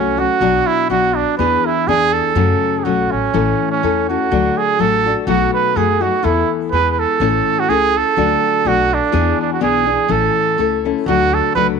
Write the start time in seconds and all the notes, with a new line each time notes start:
Already playing: C2 F#3 A3 C#4 F#4
0.17 F#3 A3 C#4 F#4
0.40 B1 B2 F#3 B3 D4 F#4
0.67 E4
0.89 B1 F#3 B3 D4 F#4
1.16 D4
1.38 E2 E3 B3 D4 G#4 B4
1.65 E4
1.87 E2 E3 B3 D4 G#4
2.13 A4
2.35 F#2 C#3 F#3 A3 C#4 F#4
2.79 G#4
2.84 B1 F#3 A3 C#4 F#4
3.11 A1 C#4
3.33 A1 A2 E3 A3 C#4 E4 A4
3.71 C#4
3.83 E2 A3 C#4 E4 A4
4.09 A3 C#4 E4 F#4 A4
4.31 D2 D3 F#3 A3 D4 F#4
4.58 G#4
4.79 A1 F#3 A3 D4 F#4 A4
5.06 A3 D4 F#4
5.27 B1 B2 F#3 A3 D#4 F#4
5.54 B4
5.75 F#2 F#3 A3 D#4 F#4 G#4
6.00 A3 D#4 F#4
6.23 E2 E3 B3 E4 A4
6.72 E2 G#3 B3 E4 G#4 B4
6.91 B4
6.99 A4
7.20 A1 A2 E3 A3 C#4 E4 A4
7.60 F#4
7.69 C#2 A3 C#4 E4 G#4 A4
7.97 A4
8.16 D2 D3 F#3 A3 D4 F#4
8.65 B1 F#3 A3 D4 F#4
8.94 D4
9.12 E2 E3 B3 D4 G#4
9.42 D4
9.53 F#4
9.61 B1 E3 B3 D4 G#4
9.86 B3 D4 G#4
10.08 A1 A2 E3 A3 C#4 E4 A4
10.58 C#2 A3 C#4 E4 A4
10.85 A3 C#4 E4 A4
11.06 D2 D3 F#3 A3 D4 F#4
11.34 A4
11.55 C#2 F#3 A3 D4 F#4 B4